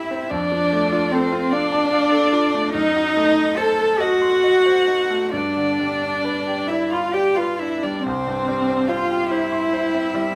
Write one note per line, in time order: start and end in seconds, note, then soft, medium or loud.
0.00 0.27 C2 soft
0.00 0.35 G2 soft
0.00 0.11 C4 soft
0.00 0.31 E4 medium
0.00 0.32 E4 medium
0.00 0.35 E4 soft
0.00 0.35 G4 soft
0.00 0.34 C5 soft
0.00 0.32 E5 medium
0.00 0.35 E5 medium
0.00 0.34 G5 soft
0.11 0.32 C4 soft
0.31 2.70 F2 medium
0.31 1.14 D4 medium
0.31 1.13 D4 medium
0.31 1.16 D5 medium
0.52 0.84 F3 soft
0.73 1.05 A3 soft
0.92 1.25 F4 medium
1.11 1.54 C4 medium
1.11 1.45 A4 medium
1.11 1.52 C5 medium
1.32 1.65 F4 medium
1.52 2.74 D4 loud
1.52 2.73 D4 medium
1.52 2.72 D5 medium
1.52 1.85 F5 medium
1.72 2.05 A5 medium
1.93 2.26 F5 medium
2.12 2.45 A4 medium
2.33 2.66 F4 medium
2.54 2.75 A3 soft
2.73 5.29 F#2 medium
2.73 3.58 D#4 medium
2.73 3.56 D#4 loud
2.73 3.59 D#5 medium
2.96 3.29 F#3 soft
3.17 3.50 A3 medium
3.36 3.70 D#4 medium
3.57 4.01 A4 medium
3.57 4.04 A4 medium
3.57 3.92 C5 soft
3.57 4.02 A5 medium
3.79 4.14 A4 medium
3.99 5.34 F#4 medium
3.99 4.35 D#5 medium
3.99 5.32 F#5 medium
4.22 4.57 C6 medium
4.44 4.79 D#5 soft
4.66 5.02 C5 soft
4.87 5.24 D#4 soft
5.10 5.33 A3 soft
5.33 8.01 G2 soft
5.33 6.69 D4 medium
5.33 6.71 D4 medium
5.33 6.70 D5 medium
5.57 5.93 D3 soft
5.80 6.16 G3 soft
6.02 6.38 D4 soft
6.25 6.61 B4 soft
6.47 6.83 G4 soft
6.67 6.91 E4 medium
6.67 6.94 E4 medium
6.67 7.06 D5 soft
6.67 6.92 E5 medium
6.90 7.14 F4 medium
6.90 7.15 F4 medium
6.90 7.15 F5 medium
6.90 7.29 B5 soft
7.13 7.37 G4 medium
7.13 7.39 G4 medium
7.13 7.51 D5 soft
7.13 7.38 G5 medium
7.35 7.61 F4 medium
7.35 7.59 F4 medium
7.35 7.74 B4 soft
7.35 7.60 F5 medium
7.58 7.96 D4 soft
7.58 7.84 E4 medium
7.58 7.81 E4 medium
7.58 7.84 E5 medium
7.81 8.05 G3 soft
7.81 8.03 D4 medium
7.81 8.05 D5 medium
8.04 10.35 C2 medium
8.04 8.92 C4 medium
8.04 8.90 C4 medium
8.04 8.89 C5 medium
8.27 8.61 G2 soft
8.48 8.82 G3 soft
8.68 9.02 C4 soft
8.88 9.32 F4 medium
8.88 9.31 F4 medium
8.88 9.23 C5 medium
8.88 9.30 F5 medium
9.11 9.45 G4 medium
9.30 10.35 E4 medium
9.30 9.65 C5 medium
9.30 10.35 E5 medium
9.52 9.86 C6 medium
9.73 10.07 C5 medium
9.94 10.28 C4 soft
10.15 10.35 G3 medium